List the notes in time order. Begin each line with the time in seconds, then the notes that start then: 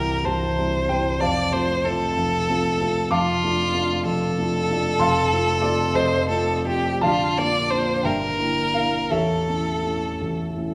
Already playing: C1 C2 G3 C4 E4 A#4 E5 G5 A#5
0.24 C1 C2 C5 A5
0.58 G3 C4 E4
0.89 G3 C4 E4 G5
1.21 F1 F2 C5 D5 F5 A5
1.53 A3 C4 F4 C5
1.84 A3 C4 F4 A4
2.17 F1 F2
2.49 A3 C4 F4
2.81 A3 C4 F4
3.11 F1 F2 F4 F5 A5 D6
3.44 A3 D4 F4
3.74 A3 D4 F4
4.06 F1 F2 A4
4.39 A3 D4 F4
4.70 A3 D4 F4
5.00 F1 F2 F5 A5 C6
5.32 A3 C4 F4
5.62 A3 C4 F4 D5
5.94 F1 F2 A4 C5 D#5
6.29 A3 C4 F4 A4
6.66 A3 C4 F4 G4
7.01 A#0 A#1 F4 D5 F5 A5
7.38 A#3 D4 F4 D5
7.70 A#3 D4 F4 C5
8.03 G1 G2 A#4 D5 E5 G5
8.39 A#3 D4 E4
8.74 A#3 D4 E4 F5
9.10 A0 A1 A4 C#5 E5
9.49 A3 C#4 E4
9.85 A3 C#4 E4
10.21 A0 A1
10.57 A3 C#4 E4